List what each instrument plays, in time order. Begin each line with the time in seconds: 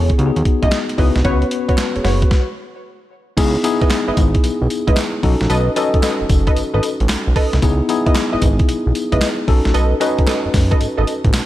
Already playing: analog synth bass E1, tine electric piano B3 C#4 E4 G#4, analog polysynth G#4 A4 C#5
0.10 kick, closed hi-hat
0.18 analog synth bass C#2, tine electric piano B3 D#4 F#4 G4, closed hi-hat
0.26 tine electric piano G#4
0.36 analog synth bass D#2, closed hi-hat
0.45 kick, closed hi-hat
0.62 analog synth bass C#2, analog polysynth E4 G#4 D#5, kick, closed hi-hat
0.72 snare, clap, closed hi-hat
0.89 closed hi-hat
0.98 analog synth bass C#2, tine electric piano B3 D#4 F#4 B4, analog polysynth E4 G#4 D#5, kick, open hi-hat
1.16 analog synth bass C2, snare, closed hi-hat
1.24 analog synth bass C#2, tine electric piano B3 C#4 F#4 B4, analog polysynth F#4 B4 C#5, kick, closed hi-hat
1.42 closed hi-hat
1.51 closed hi-hat
1.68 analog synth bass F#1, analog polysynth F#4 B4 C#5, kick, closed hi-hat
1.78 tine electric piano F#4 B4, snare, clap, closed hi-hat
1.96 analog synth bass F#1, tine electric piano G#4 C#5, closed hi-hat
2.04 analog synth bass F#1, analog polysynth F#4 B4 C#5, snare, open hi-hat
2.22 tine electric piano F#4 B4, kick, closed hi-hat
2.31 kick, snare
3.37 analog synth bass C#2, tine electric piano B3 D#4 E4 G#4, kick, closed hi-hat, crash, tambourine
3.63 tine electric piano B3 D#4 E4 G#4, closed hi-hat, tambourine
3.81 analog synth bass G#1, analog polysynth E4 B4 D#5, kick, closed hi-hat
3.90 snare, clap, closed hi-hat, tambourine
4.08 analog synth bass G#1, analog polysynth E4 B4 D#5
4.17 analog synth bass G#1, kick, closed hi-hat, tambourine
4.35 kick, closed hi-hat
4.44 analog synth bass B1, closed hi-hat, tambourine
4.62 analog synth bass B1
4.70 closed hi-hat, tambourine
4.87 analog synth bass C#2, analog polysynth E4 B4 D#5, kick, closed hi-hat
4.97 snare, clap, closed hi-hat, tambourine
5.23 analog synth bass B1, tine electric piano C#4 D#4 F#4 A4, kick, open hi-hat
5.41 analog synth bass A#1, snare, closed hi-hat
5.50 analog synth bass B1, analog polysynth A4 B4 D#5, closed hi-hat, tambourine
5.76 tine electric piano C#4 D#4 F#4 A4, analog polysynth A4 B4 D#5, closed hi-hat, tambourine
5.94 analog synth bass F#1, kick, closed hi-hat
6.03 analog polysynth A4 B4 D#5, snare, clap, closed hi-hat, tambourine
6.21 analog synth bass F#1
6.29 analog synth bass F#1, kick, closed hi-hat, tambourine
6.47 analog polysynth A4 B4 D#5, kick, closed hi-hat
6.56 analog synth bass G#1, closed hi-hat, tambourine
6.74 analog synth bass G#1, analog polysynth A4 B4 D#5
6.83 closed hi-hat, tambourine
7.00 analog synth bass A1, closed hi-hat
7.09 analog synth bass B1, snare, clap, closed hi-hat, tambourine
7.27 analog synth bass B1
7.36 analog polysynth A4 B4 D#5, kick, open hi-hat
7.53 analog synth bass C2, snare, closed hi-hat
7.62 analog synth bass C#2, tine electric piano B3 D#4 E4 G#4, kick, closed hi-hat, tambourine
7.89 tine electric piano B3 D#4 E4 G#4, closed hi-hat, tambourine
8.06 analog synth bass G#1, analog polysynth E4 B4 D#5, kick, closed hi-hat
8.15 snare, clap, closed hi-hat, tambourine
8.33 analog synth bass G#1, analog polysynth E4 B4 D#5
8.42 analog synth bass G#1, kick, closed hi-hat, tambourine
8.59 kick, closed hi-hat
8.69 analog synth bass B1, closed hi-hat, tambourine
8.86 analog synth bass B1
8.95 closed hi-hat, tambourine
9.12 analog synth bass C#2, analog polysynth E4 B4 D#5, kick, closed hi-hat
9.21 snare, clap, closed hi-hat, tambourine
9.48 analog synth bass B1, tine electric piano C#4 D#4 F#4 A4, kick, open hi-hat
9.65 analog synth bass A#1, snare, closed hi-hat
9.74 analog synth bass B1, analog polysynth A4 B4 D#5, closed hi-hat, tambourine
10.00 tine electric piano C#4 D#4 F#4 B4, analog polysynth A4 B4 D#5, closed hi-hat, tambourine
10.18 analog synth bass F#1, kick, closed hi-hat
10.27 analog polysynth A4 B4 D#5, snare, clap, closed hi-hat, tambourine
10.46 analog synth bass F#1
10.54 analog synth bass F#1, kick, snare, open hi-hat, tambourine
10.71 analog polysynth A4 B4 D#5, kick, closed hi-hat
10.81 analog synth bass G#1, closed hi-hat, tambourine
10.97 analog synth bass G#1, analog polysynth A4 B4 D#5
11.07 closed hi-hat, tambourine
11.24 analog synth bass A1, kick, closed hi-hat
11.34 analog synth bass B1, snare, clap, closed hi-hat, tambourine